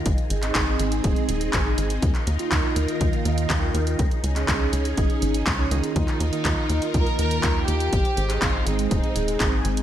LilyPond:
<<
  \new Staff \with { instrumentName = "Violin section" } { \time 4/4 \key aes \lydian \tempo 4 = 122 r1 | r1 | r1 | ees'2 bes'8 bes'4 g'8~ |
g'4 f'8 ees'8 ees'4 r4 | }
  \new Staff \with { instrumentName = "Analog polysynth" } { \time 4/4 \key aes \lydian r8. <aes, c' ees' aes' ees''>2~ <aes, c' ees' aes' ees''>16 <aes, c' ees' aes' aes''>4 | r8. <ees bes ees' f' ees''>2~ <ees bes ees' f' ees''>16 <ees bes ees' f' g''>4 | r8. <des des' ees' aes' ees''>2~ <des des' ees' aes' ees''>16 r16 <des des' ees' aes' des''>16 <ees bes ees' f' ees''>8~ | <ees bes ees' f' ees''>8. <ees bes ees' f' ees''>2~ <ees bes ees' f' ees''>16 <ees bes ees' f' g''>4 |
r8. <aes, c' ees' aes' ees''>2~ <aes, c' ees' aes' ees''>16 <aes, c' ees' aes' aes''>4 | }
  \new Staff \with { instrumentName = "String machine" } { \time 4/4 \key aes \lydian << { aes'1 | <ees f' bes'>1 | aes'1 | <ees f' bes'>1 |
c'1 | } \\ { <c' ees'>1~ | <c' ees'>1 | des'1 | r1 |
aes1 | } >> }
  \new Staff \with { instrumentName = "Analog synth bass" } { \clef bass \time 4/4 \key aes \lydian aes,,8 aes,,8 aes,,8 aes,,8 ees,,8 ees,,8 aes,,8 aes,,8 | ees,8 ees,8 ees,8 ees,8 ees,8 ees,8 ees,8 ees,8 | des,8 des,8 des,8 des,8 aes,,8 aes,,8 des,8 des,8 | ees,8 ees,8 ees,8 ees,8 ees,8 ees,8 ees,8 ees,8 |
aes,,8 aes,,8 aes,,8 aes,,8 ees,,8 ees,,8 aes,,8 aes,,8 | }
  \new DrumStaff \with { instrumentName = "Drums" } \drummode { \time 4/4 <hh bd>16 hh16 hh16 <hc hh>16 <hc hh bd>8 hh16 hh16 <hh bd>16 hh16 hh16 hh16 <hc hh bd>8 hh16 hh16 | <hh bd>16 <hc hh>16 hh16 hh16 <hc hh bd>8 hh16 hh16 <hh bd>16 hh16 hh16 hh16 <hc hh bd>8 hh16 hh16 | <hh bd>16 hh16 hh16 <hc hh>16 <hc hh bd>8 hh16 hh16 <hh bd>16 hh16 hh16 hh16 <hc hh bd>8 hh16 hh16 | <hh bd>16 <hc hh>16 hh16 hh16 <hc hh bd>8 hh16 hh16 <hh bd>16 hh16 hh16 hh16 <hc hh bd>8 hh16 hh16 |
<hh bd>16 hh16 hh16 <hc hh>16 <hc hh bd>8 hh16 hh16 <hh bd>16 hh16 hh16 hh16 <hc hh bd>8 hh16 hh16 | }
>>